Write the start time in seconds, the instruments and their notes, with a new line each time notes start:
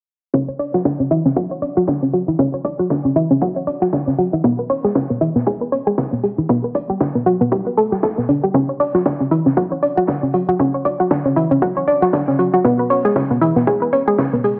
0.34 synth arpeggio sound C#4, kick, closed hi-hat
0.48 synth arpeggio sound C#5
0.59 synth arpeggio sound D5, open hi-hat
0.74 synth arpeggio sound F#4, snare
0.85 synth arpeggio sound D4, kick, snare, closed hi-hat
1.00 synth arpeggio sound C#4, closed hi-hat
1.11 synth arpeggio sound E4, closed hi-hat, open hi-hat
1.25 synth arpeggio sound C#4, snare
1.36 synth arpeggio sound F#4, kick, closed hi-hat
1.51 synth arpeggio sound C#5
1.62 synth arpeggio sound D5, closed hi-hat, open hi-hat
1.77 synth arpeggio sound F#4
1.87 synth arpeggio sound D4, kick, snare, closed hi-hat
2.02 synth arpeggio sound C#4, closed hi-hat
2.13 synth arpeggio sound F#4, closed hi-hat, open hi-hat
2.28 synth arpeggio sound E4, closed hi-hat
2.39 synth arpeggio sound C#4, kick, closed hi-hat
2.54 synth arpeggio sound C#5
2.64 synth arpeggio sound D5, kick, closed hi-hat, open hi-hat
2.79 synth arpeggio sound F#4
2.90 synth arpeggio sound D4, kick, snare, closed hi-hat
3.05 synth arpeggio sound C#4, closed hi-hat
3.15 synth arpeggio sound E4, closed hi-hat, open hi-hat
3.31 synth arpeggio sound C#4, closed hi-hat
3.41 synth arpeggio sound F#4, kick, closed hi-hat
3.56 synth arpeggio sound C#5, closed hi-hat
3.67 synth arpeggio sound D5, closed hi-hat, open hi-hat
3.82 synth arpeggio sound F#4, snare
3.93 synth arpeggio sound D4, kick, snare, closed hi-hat
4.07 synth arpeggio sound C#4, snare
4.18 synth arpeggio sound F#4, closed hi-hat, open hi-hat
4.33 synth arpeggio sound E4
4.44 synth arpeggio sound B3, kick, closed hi-hat
4.59 synth arpeggio sound B4
4.69 synth arpeggio sound C#5, open hi-hat
4.84 synth arpeggio sound G#4, snare
4.95 synth arpeggio sound C#4, kick, snare, closed hi-hat
5.10 synth arpeggio sound B3, closed hi-hat
5.21 synth arpeggio sound E4, closed hi-hat, open hi-hat
5.36 synth arpeggio sound B3, snare
5.47 synth arpeggio sound G#4, kick, closed hi-hat
5.61 synth arpeggio sound B4
5.72 synth arpeggio sound C#5, closed hi-hat, open hi-hat
5.87 synth arpeggio sound G#4
5.98 synth arpeggio sound C#4, kick, snare, closed hi-hat
6.12 synth arpeggio sound B3, closed hi-hat
6.24 synth arpeggio sound G#4, closed hi-hat, open hi-hat
6.38 synth arpeggio sound E4, closed hi-hat
6.49 synth arpeggio sound B3, kick, closed hi-hat
6.64 synth arpeggio sound B4
6.74 synth arpeggio sound D5, kick, closed hi-hat, open hi-hat
6.90 synth arpeggio sound G4
7.00 synth arpeggio sound D4, kick, snare, closed hi-hat
7.15 synth arpeggio sound B3, closed hi-hat
7.26 synth arpeggio sound F#4, closed hi-hat, open hi-hat
7.41 synth arpeggio sound B3, closed hi-hat
7.52 synth arpeggio sound G4, kick, closed hi-hat
7.66 synth arpeggio sound B4, closed hi-hat
7.77 synth arpeggio sound A4, closed hi-hat, open hi-hat
7.92 synth arpeggio sound G4, snare
8.03 synth arpeggio sound A4, kick, snare, closed hi-hat
8.18 synth arpeggio sound B3, snare
8.29 synth arpeggio sound D4, closed hi-hat, open hi-hat
8.43 synth arpeggio sound G4
8.54 synth arpeggio sound C#4, kick, closed hi-hat
8.69 synth arpeggio sound C#5
8.80 synth arpeggio sound D5, open hi-hat
8.95 synth arpeggio sound F#4, snare
9.05 synth arpeggio sound D4, kick, snare, closed hi-hat
9.20 synth arpeggio sound C#4, closed hi-hat
9.31 synth arpeggio sound E4, closed hi-hat, open hi-hat
9.46 synth arpeggio sound C#4, snare
9.57 synth arpeggio sound F#4, kick, closed hi-hat
9.72 synth arpeggio sound C#5
9.82 synth arpeggio sound D5, closed hi-hat, open hi-hat
9.97 synth arpeggio sound F#4
10.07 synth arpeggio sound D4, kick, snare, closed hi-hat
10.23 synth arpeggio sound C#4, closed hi-hat
10.33 synth arpeggio sound F#4, closed hi-hat, open hi-hat
10.49 synth arpeggio sound F#4, closed hi-hat
10.59 synth arpeggio sound C#4, kick, closed hi-hat
10.74 synth arpeggio sound C#5
10.85 synth arpeggio sound D5, kick, closed hi-hat, open hi-hat
11.00 synth arpeggio sound F#4
11.11 synth arpeggio sound D4, kick, snare, closed hi-hat
11.26 synth arpeggio sound C#4, closed hi-hat
11.36 synth arpeggio sound E4, closed hi-hat, open hi-hat
11.51 synth arpeggio sound C#4, closed hi-hat
11.62 synth arpeggio sound F#4, kick, closed hi-hat
11.77 synth arpeggio sound C#5, closed hi-hat
11.88 synth arpeggio sound D5, closed hi-hat, open hi-hat
12.02 synth arpeggio sound F#4, snare
12.13 synth arpeggio sound D4, kick, snare, closed hi-hat
12.28 synth arpeggio sound C#4, snare
12.39 synth arpeggio sound F#4, closed hi-hat, open hi-hat
12.54 synth arpeggio sound F#4
12.65 synth arpeggio sound B3, kick, closed hi-hat
12.79 synth arpeggio sound B4
12.90 synth arpeggio sound C#5, open hi-hat
13.05 synth arpeggio sound G#4, snare
13.16 synth arpeggio sound C#4, kick, snare, closed hi-hat
13.31 synth arpeggio sound B3, closed hi-hat
13.42 synth arpeggio sound E4, closed hi-hat, open hi-hat
13.56 synth arpeggio sound B3, snare
13.67 synth arpeggio sound G#4, kick, closed hi-hat
13.82 synth arpeggio sound B4
13.93 synth arpeggio sound C#5, closed hi-hat, open hi-hat
14.08 synth arpeggio sound G#4
14.18 synth arpeggio sound C#4, kick, snare, closed hi-hat
14.33 synth arpeggio sound B3, closed hi-hat
14.44 synth arpeggio sound G#4, open hi-hat